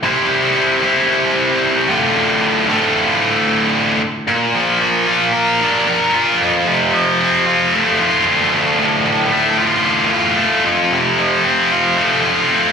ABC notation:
X:1
M:4/4
L:1/8
Q:1/4=113
K:Dm
V:1 name="Distorted electric guitar"
[C,G,CEGc]3 [C,G,CEGc]4 [D,,A,,D,A,F]- | [D,,A,,D,A,F]2 [D,,A,,D,A,F]4- [D,,A,,D,A,F] z | B,, F, B, F B D B F | F,, C, F, C F A, F D,, |
D,, A,, A,, A, F D, F A, | F,, C, F, C F A, F C |]